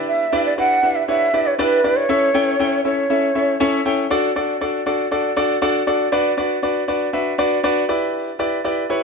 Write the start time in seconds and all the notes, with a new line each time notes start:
Already playing: D4 E4 G4 B4 D5
0.07 E5
0.32 D4 E4 G4 B4 D5
0.45 D5
0.58 D4 E4 G4 B4 D5 F#5
0.83 D4 E4 G4 B4 E5
0.96 E5
1.08 D4 E4 G4 B4 C#5 E5
1.33 D4 E4 G4 B4 D5
1.46 C#5
1.59 D4 E4 G4 B4 D5
1.84 D4 E4 G4 B4 D5
1.96 C#5
2.09 C#4 E4 A4 C#5 E5
2.34 C#4 E4 A4 C#5 G5
2.59 C#4 E4 A4 C#5 G5
2.85 C#4 E4 A4 C#5 E5
3.10 C#4 E4 A4 C#5 E5
3.35 C#4 E4 A4 C#5 E5
3.60 C#4 E4 A4 C#5 E5
3.85 C#4 E4 A4 C#5 G5
4.11 D4 F#4 A4 D5
4.36 D4 F#4 A4 D5
4.61 D4 F#4 A4 D5
4.86 D4 F#4 A4 D5
5.11 D4 F#4 A4 D5
5.37 D4 F#4 A4 D5
5.62 D4 F#4 A4 D5
5.87 D4 F#4 A4 D5
6.12 D4 F#4 B4 D5
6.37 D4 F#4 B4 D5
6.63 D4 F#4 B4 D5
6.88 D4 F#4 B4 D5
7.13 D4 F#4 B4 E5
7.38 D4 F#4 B4 D5
7.64 D4 F#4 B4 D5
7.89 E4 G4 B4 D5
8.39 E4 G4 B4 D5
8.64 E4 G4 B4 D5
8.90 E4 G4 B4 C#5